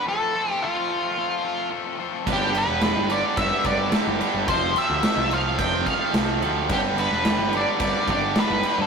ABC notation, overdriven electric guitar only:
X:1
M:4/4
L:1/8
Q:1/4=108
K:Gmix
V:1 name="Overdriven electric guitar" clef=bass
z8 | [G,,D,G,] [G,,D,G,] [G,,D,G,] [G,,D,G,] [G,,D,G,] [G,,D,G,] [G,,D,G,] [G,,D,G,] | [F,,C,F,] [F,,C,F,] [F,,C,F,] [F,,C,F,] [F,,C,F,] [F,,C,F,] [F,,C,F,] [F,,C,F,] | [G,,D,G,] [G,,D,G,] [G,,D,G,] [G,,D,G,] [G,,D,G,] [G,,D,G,] [G,,D,G,] [G,,D,G,] |]